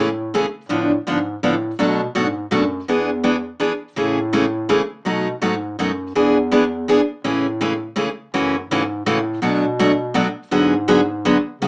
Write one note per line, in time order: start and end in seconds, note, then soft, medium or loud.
0.00 0.47 A2 medium
0.34 0.45 C#3 medium
0.34 0.45 E3 medium
0.34 0.45 A3 medium
0.34 0.45 C#4 medium
0.34 0.45 G#4 medium
0.69 0.98 A2 medium
0.69 0.90 D3 medium
0.69 0.91 F3 medium
0.69 0.91 B3 medium
0.69 0.91 D4 medium
1.06 1.37 G#2 medium
1.06 1.17 D3 medium
1.06 1.18 F3 medium
1.06 1.18 B3 medium
1.06 1.18 D4 medium
1.43 1.74 A2 medium
1.43 1.54 D3 medium
1.43 1.54 F3 medium
1.43 1.54 B3 medium
1.43 1.54 D4 medium
1.79 2.08 B2 medium
1.79 2.00 B2 medium
1.79 2.00 F#3 medium
1.79 2.00 A3 medium
1.79 2.00 D4 medium
1.79 2.00 F#4 medium
2.14 2.46 G#2 medium
2.14 2.26 B2 medium
2.14 2.26 F#3 medium
2.14 2.26 A3 medium
2.14 2.26 D4 medium
2.14 2.26 F#4 medium
2.51 2.82 F#2 medium
2.51 2.62 B2 medium
2.51 2.62 F#3 medium
2.51 2.63 A3 medium
2.51 2.63 D4 medium
2.51 2.63 F#4 medium
2.88 3.55 E2 medium
2.88 3.09 E3 medium
2.88 3.09 B3 medium
2.88 3.09 D4 medium
2.88 3.10 G#4 medium
3.23 3.35 E3 medium
3.23 3.35 B3 medium
3.23 3.35 D4 medium
3.23 3.35 G#4 medium
3.60 3.71 E3 medium
3.60 3.71 B3 medium
3.60 3.72 D4 medium
3.60 3.72 G#4 medium
3.96 4.84 A2 medium
3.96 4.18 C#3 medium
3.96 4.18 E3 medium
3.96 4.18 A3 medium
3.96 4.18 C#4 medium
3.96 4.18 G#4 medium
4.33 4.44 C#3 medium
4.33 4.44 E3 medium
4.33 4.45 A3 medium
4.33 4.45 C#4 medium
4.33 4.45 G#4 medium
4.69 4.81 C#3 medium
4.69 4.80 E3 medium
4.69 4.81 A3 medium
4.69 4.81 C#4 medium
4.69 4.81 G#4 medium
5.05 5.27 B2 medium
5.05 5.35 B2 medium
5.05 5.27 F#3 medium
5.05 5.27 A3 medium
5.05 5.27 D#4 medium
5.05 5.27 F#4 medium
5.42 5.73 G#2 medium
5.42 5.53 B2 medium
5.42 5.53 F#3 medium
5.42 5.53 A3 medium
5.42 5.54 D#4 medium
5.42 5.54 F#4 medium
5.78 6.09 F#2 medium
5.78 5.90 B2 medium
5.78 5.90 F#3 medium
5.78 5.90 A3 medium
5.78 5.90 D#4 medium
5.78 5.91 F#4 medium
6.14 7.02 E2 medium
6.14 6.36 E3 medium
6.14 6.37 B3 medium
6.14 6.37 D4 medium
6.14 6.37 G#4 medium
6.51 6.63 E3 medium
6.51 6.63 B3 medium
6.51 6.63 D4 medium
6.51 6.64 G#4 medium
6.88 6.99 E3 medium
6.88 7.00 B3 medium
6.88 7.00 D4 medium
6.88 7.00 G#4 medium
7.24 7.92 A2 medium
7.24 7.45 C#3 medium
7.24 7.46 E3 medium
7.24 7.46 A3 medium
7.24 7.46 C#4 medium
7.24 7.46 G#4 medium
7.61 7.72 C#3 medium
7.61 7.72 E3 medium
7.61 7.72 A3 medium
7.61 7.73 C#4 medium
7.61 7.72 G#4 medium
7.96 8.08 C#3 medium
7.96 8.08 E3 medium
7.96 8.08 A3 medium
7.96 8.08 C#4 medium
7.96 8.08 G#4 medium
8.34 8.63 F#2 medium
8.34 8.55 C#3 medium
8.34 8.55 E3 medium
8.34 8.55 A3 medium
8.34 8.55 C#4 medium
8.34 8.55 F#4 medium
8.69 9.01 G#2 medium
8.69 8.82 C#3 medium
8.69 8.82 E3 medium
8.69 8.82 A3 medium
8.69 8.82 C#4 medium
8.69 8.83 F#4 medium
9.05 9.37 A2 medium
9.05 9.18 C#3 medium
9.05 9.18 E3 medium
9.05 9.18 A3 medium
9.05 9.18 C#4 medium
9.05 9.18 F#4 medium
9.42 9.63 B2 medium
9.42 10.30 B2 medium
9.42 9.64 F#3 medium
9.42 9.64 A3 medium
9.42 9.64 D4 medium
9.42 9.64 F#4 medium
9.79 9.91 B2 medium
9.79 9.91 F#3 medium
9.79 9.91 A3 medium
9.79 9.91 D4 medium
9.79 9.91 F#4 medium
10.14 10.26 B2 medium
10.14 10.26 F#3 medium
10.14 10.26 A3 medium
10.14 10.27 D4 medium
10.14 10.27 F#4 medium
10.51 11.39 G#2 medium
10.51 10.73 D3 medium
10.51 10.73 F#3 medium
10.51 10.73 B3 medium
10.51 10.73 F#4 medium
10.51 10.73 G#4 medium
10.88 10.99 D3 medium
10.88 11.00 F#3 medium
10.88 11.00 B3 loud
10.88 11.00 F#4 medium
10.88 11.00 G#4 medium
11.25 11.36 D3 medium
11.25 11.36 F#3 medium
11.25 11.37 B3 medium
11.25 11.37 F#4 medium
11.25 11.37 G#4 medium
11.61 11.68 C#3 medium
11.61 11.68 F#3 medium
11.61 11.68 B3 medium
11.61 11.68 C#4 medium
11.61 11.68 F#4 medium